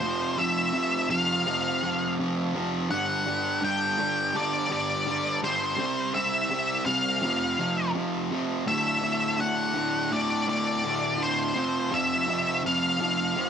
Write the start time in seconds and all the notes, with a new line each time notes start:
Already playing: C5
0.00 F2 C3 F3
0.37 F2 C3 F3 E5
0.73 F2 C3 F3
1.10 F2 C3 F3 F5
1.46 F2 C3 F3
1.83 F2 C3 F3
2.19 F2 C3 F3
2.54 F2 C3 F3
2.91 G2 D3 G3 F#5
3.26 G2 D3 G3
3.62 G2 D3 G3 G5
3.99 G2 D3 G3
4.35 G2 D3 G3 D5
4.69 G2 D3 G3 D5
5.07 G2 D3 G3
5.42 G2 D3 G3 C5
5.78 C3 G3 C4
6.14 C3 G3 C4 E5
6.50 C3 G3 C4
6.86 C3 G3 C4 F5
7.22 F2 C3 F3
7.59 F2 C3 F3
7.95 F2 C3 F3
8.31 F2 C3 F3
8.66 D2 A2 D3 E5
9.01 D2 A2 D3
9.38 D2 A2 D3 F#5
9.74 D2 A2 D3
10.11 D2 A2 D3 D5
10.47 D2 A2 D3 D5
10.84 D2 A2 D3
11.19 D2 A2 D3 C5
11.55 F2 C3 F3
11.91 F2 C3 F3 E5
12.27 F2 C3 F3
12.64 F2 C3 F3 F5
13.00 F2 C3 F3
13.36 F2 C3 F3